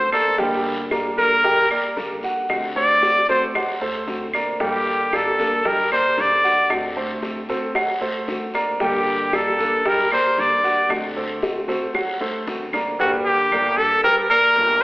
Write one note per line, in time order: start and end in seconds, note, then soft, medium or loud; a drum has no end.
0.00 0.11 D2 medium
0.00 0.37 D3 soft
0.00 0.38 A3 medium
0.00 0.38 C4 medium
0.00 0.38 F#4 medium
0.12 0.34 A#3 medium
0.12 0.37 A4 medium
0.12 0.34 A#4 medium
0.12 0.34 D5 medium
0.12 high bongo soft
0.12 short guiro medium
0.12 claves medium
0.38 0.89 G1 loud
0.38 0.90 D3 medium
0.38 0.82 G3 medium
0.38 0.90 G3 medium
0.38 0.91 A#3 medium
0.38 0.91 D4 medium
0.38 0.82 G4 medium
0.38 0.91 A4 medium
0.38 0.82 G5 medium
0.38 high bongo medium
0.38 long guiro medium
0.65 high bongo soft
0.91 1.16 G1 medium
0.91 1.17 G3 medium
0.91 1.35 A#3 medium
0.91 1.17 A#3 soft
0.91 1.17 D4 medium
0.91 1.16 A4 medium
0.91 1.35 A#4 medium
0.91 1.35 D5 medium
0.91 high bongo medium
0.91 short guiro medium
0.91 claves medium
1.17 1.68 G2 loud
1.17 1.43 G3 medium
1.17 1.43 A#3 medium
1.17 1.43 D4 medium
1.17 1.43 A4 medium
1.17 1.67 A#4 loud
1.17 short guiro medium
1.44 1.66 G3 medium
1.44 1.66 G4 medium
1.44 1.66 G5 medium
1.44 muted nylon-string guitar stroke medium
1.44 high bongo medium
1.44 long guiro medium
1.70 1.96 G1 medium
1.70 2.14 A#3 medium
1.70 1.85 G4 medium
1.70 2.14 D5 medium
1.70 high bongo soft
1.70 claves medium
1.97 2.22 C#2 medium
1.97 2.48 G3 soft
1.97 2.49 A#3 medium
1.97 2.49 D4 soft
1.97 2.49 A4 medium
1.97 high bongo soft
1.97 low bongo medium
1.97 short guiro medium
2.23 2.67 F#4 medium
2.23 2.67 F#5 medium
2.23 high bongo soft
2.23 short guiro medium
2.49 3.00 D2 loud
2.49 3.01 D3 medium
2.49 3.01 A3 medium
2.49 3.02 C4 medium
2.49 3.02 F#4 medium
2.49 high bongo medium
2.49 long guiro medium
2.49 claves medium
2.76 3.19 A3 medium
2.76 3.19 A4 medium
2.76 3.19 C5 medium
2.76 3.25 D5 loud
2.76 high bongo soft
3.02 3.27 D2 medium
3.02 3.28 D3 medium
3.02 3.28 A3 medium
3.02 3.28 C4 medium
3.02 3.27 F#4 medium
3.02 high bongo medium
3.02 short guiro medium
3.29 3.79 D3 loud
3.29 3.50 A3 medium
3.29 3.54 A3 medium
3.29 3.54 C4 medium
3.29 3.54 F#4 medium
3.29 3.50 A4 medium
3.29 3.51 C5 medium
3.29 3.45 C5 medium
3.29 short guiro medium
3.55 3.77 F#3 medium
3.55 3.77 F#4 medium
3.55 3.77 F#5 medium
3.55 muted nylon-string guitar stroke medium
3.55 high bongo medium
3.55 long guiro medium
3.55 claves medium
3.81 4.06 D2 medium
3.81 4.24 A3 medium
3.81 4.25 A4 medium
3.81 4.25 C5 medium
3.81 high bongo soft
4.07 4.32 D2 medium
4.07 4.59 D3 soft
4.07 4.59 A3 soft
4.07 4.60 C4 medium
4.07 4.60 F#4 medium
4.07 high bongo soft
4.07 low bongo medium
4.07 short guiro medium
4.33 4.55 A#3 medium
4.33 4.56 A#4 medium
4.33 4.56 D5 medium
4.33 high bongo soft
4.33 short guiro medium
4.33 claves medium
4.60 5.10 G1 loud
4.60 5.12 D3 medium
4.60 5.11 G3 medium
4.60 5.03 G3 medium
4.60 5.12 A#3 medium
4.60 5.12 D4 medium
4.60 5.03 G4 medium
4.60 5.17 G4 medium
4.60 5.12 A4 medium
4.60 5.04 G5 medium
4.60 high bongo medium
4.60 long guiro medium
4.87 high bongo soft
5.12 5.38 G1 loud
5.12 5.38 G3 soft
5.12 5.38 A#3 medium
5.12 5.56 A#3 medium
5.12 5.38 D4 medium
5.12 5.56 A4 medium
5.12 5.38 A4 medium
5.12 5.69 A4 medium
5.12 5.56 D5 medium
5.12 high bongo medium
5.12 short guiro medium
5.12 claves medium
5.39 5.89 G2 loud
5.39 5.64 G3 medium
5.39 5.64 A#3 medium
5.39 5.64 D4 medium
5.39 5.64 A4 medium
5.39 short guiro medium
5.65 5.87 G3 medium
5.65 5.87 G4 medium
5.65 5.92 A#4 medium
5.65 5.87 G5 medium
5.65 muted nylon-string guitar stroke medium
5.65 high bongo medium
5.65 long guiro medium
5.91 6.16 G1 medium
5.91 6.35 A#3 medium
5.91 6.22 C5 medium
5.91 6.35 D5 medium
5.91 high bongo soft
5.91 claves medium
6.17 6.43 G1 medium
6.17 6.69 G3 soft
6.17 6.69 A#3 soft
6.17 6.70 D4 medium
6.17 6.70 A4 medium
6.17 6.72 D5 medium
6.17 high bongo soft
6.17 low bongo medium
6.17 short guiro medium
6.44 6.87 F#4 medium
6.44 6.87 F#5 medium
6.44 high bongo soft
6.44 short guiro medium
6.69 7.20 D2 loud
6.69 7.22 D3 medium
6.69 7.22 A3 medium
6.69 7.22 C4 medium
6.69 7.23 F#4 medium
6.69 high bongo medium
6.69 long guiro medium
6.69 claves medium
6.97 7.40 A3 medium
6.97 7.40 A4 medium
6.97 7.40 C5 medium
6.97 high bongo soft
7.22 7.48 D2 medium
7.22 7.48 D3 medium
7.22 7.48 A3 medium
7.22 7.49 C4 medium
7.22 7.48 F#4 medium
7.22 high bongo medium
7.22 short guiro medium
7.49 7.99 D3 medium
7.49 7.71 A3 medium
7.49 7.74 A3 medium
7.49 7.74 C4 medium
7.49 7.74 F#4 medium
7.49 7.71 A4 medium
7.49 7.71 C5 medium
7.49 short guiro medium
7.75 7.97 F#3 medium
7.75 7.97 F#4 medium
7.75 7.97 F#5 medium
7.75 muted nylon-string guitar stroke medium
7.75 high bongo medium
7.75 long guiro medium
7.75 claves medium
8.01 8.27 D2 medium
8.01 8.44 A3 medium
8.01 8.44 A4 medium
8.01 8.45 C5 medium
8.01 high bongo soft
8.28 8.53 D2 medium
8.28 8.79 D3 soft
8.28 8.80 A3 soft
8.28 8.80 C4 soft
8.28 8.80 F#4 medium
8.28 high bongo soft
8.28 low bongo medium
8.28 short guiro medium
8.54 8.76 A#3 medium
8.54 8.76 A#4 medium
8.54 8.76 D5 medium
8.54 high bongo soft
8.54 short guiro medium
8.54 claves medium
8.80 9.30 G1 loud
8.80 9.32 D3 medium
8.80 9.23 G3 medium
8.80 9.32 G3 medium
8.80 9.32 A#3 medium
8.80 9.33 D4 medium
8.80 9.24 G4 medium
8.80 9.33 A4 medium
8.80 9.24 G5 medium
8.80 high bongo medium
8.80 long guiro medium
8.84 9.37 G4 medium
9.07 high bongo soft
9.32 9.57 G1 loud
9.32 9.58 G3 medium
9.32 9.76 A#3 medium
9.32 9.58 A#3 medium
9.32 9.58 D4 medium
9.32 9.76 A4 medium
9.32 9.58 A4 medium
9.32 9.90 A4 medium
9.32 9.76 D5 medium
9.32 high bongo medium
9.32 short guiro medium
9.32 claves medium
9.58 10.08 G2 loud
9.58 9.84 G3 medium
9.58 9.84 A#3 medium
9.58 9.84 D4 medium
9.58 9.84 A4 medium
9.58 short guiro medium
9.85 10.07 G3 medium
9.85 10.07 G4 medium
9.85 10.12 A#4 medium
9.85 10.07 G5 medium
9.85 muted nylon-string guitar stroke medium
9.85 high bongo medium
9.85 long guiro medium
10.10 10.36 G1 medium
10.10 10.54 A#3 medium
10.10 10.42 C5 medium
10.10 10.55 D5 medium
10.10 high bongo soft
10.10 claves medium
10.37 10.62 C2 loud
10.37 10.89 G3 medium
10.37 10.89 A#3 medium
10.37 10.90 D4 medium
10.37 10.90 A4 medium
10.37 10.91 D5 medium
10.37 high bongo soft
10.37 low bongo medium
10.37 short guiro medium
10.64 11.07 F#4 medium
10.64 11.07 F#5 medium
10.64 high bongo soft
10.64 short guiro medium
10.89 11.39 D2 loud
10.89 11.41 D3 medium
10.89 11.41 A3 medium
10.89 11.42 C4 medium
10.89 11.42 F#4 medium
10.89 high bongo medium
10.89 long guiro medium
10.89 claves medium
11.16 11.59 A3 medium
11.16 11.59 A4 medium
11.16 11.60 C5 medium
11.16 high bongo soft
11.42 11.67 D2 medium
11.42 11.67 D3 soft
11.42 11.68 A3 medium
11.42 11.67 C4 medium
11.42 11.67 F#4 medium
11.42 high bongo medium
11.42 short guiro medium
11.68 12.18 D3 loud
11.68 11.90 A3 medium
11.68 11.94 A3 medium
11.68 11.94 C4 medium
11.68 11.93 F#4 medium
11.68 11.90 A4 medium
11.68 11.90 C5 medium
11.68 short guiro medium
11.94 12.16 F#3 medium
11.94 12.16 F#4 medium
11.94 12.16 F#5 medium
11.94 muted nylon-string guitar stroke medium
11.94 high bongo loud
11.94 long guiro medium
11.94 claves medium
12.21 12.46 D2 medium
12.21 12.64 A3 medium
12.21 12.64 A4 medium
12.21 12.64 C5 medium
12.21 low bongo medium
12.47 12.72 D2 medium
12.47 12.98 D3 soft
12.47 12.99 A3 soft
12.47 12.99 C4 medium
12.47 12.99 F#4 soft
12.47 low bongo medium
12.47 short guiro medium
12.73 12.95 A#3 medium
12.73 12.95 A#4 medium
12.73 12.95 D5 medium
12.73 low bongo medium
12.73 short guiro medium
12.73 claves medium
12.99 13.49 G1 loud
12.99 13.51 D3 medium
12.99 13.42 G3 medium
12.99 13.51 G3 medium
12.99 13.51 A#3 medium
12.99 13.51 D4 medium
12.99 13.12 F#4 medium
12.99 13.42 G4 medium
12.99 13.51 A4 medium
12.99 13.43 G5 medium
12.99 cowbell loud
13.26 13.79 G4 loud
13.52 13.77 G1 loud
13.52 13.77 G3 soft
13.52 13.95 A#3 medium
13.52 13.77 A#3 medium
13.52 13.77 D4 medium
13.52 13.77 A4 medium
13.52 13.95 A#4 medium
13.52 13.95 D5 medium
13.52 cowbell medium
13.52 claves medium
13.77 14.27 G2 loud
13.77 14.03 G3 medium
13.77 14.03 A#3 medium
13.77 14.03 D4 medium
13.77 14.03 A4 loud
13.77 14.03 A4 medium
14.04 14.25 G3 medium
14.04 14.25 G4 medium
14.04 14.16 A#4 loud
14.04 14.26 G5 medium
14.04 muted nylon-string guitar stroke medium
14.04 cowbell loud
14.30 14.55 G1 medium
14.30 14.73 A#3 medium
14.30 14.83 A#4 loud
14.30 14.73 D5 medium
14.30 claves medium
14.56 14.81 G1 loud
14.56 14.84 G3 soft
14.56 14.84 A#3 soft
14.56 14.84 D4 medium
14.56 14.84 A4 medium
14.56 cowbell medium